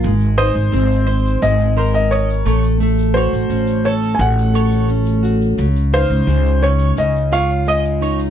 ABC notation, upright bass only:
X:1
M:4/4
L:1/16
Q:1/4=86
K:Db
V:1 name="Upright bass" clef=bass
A,,,3 A,,, A,,,4 A,,,6 =A,,,2- | =A,,,3 A,,, A,,,4 A,,,8 | D,,3 D,, D,,4 D,,8 |]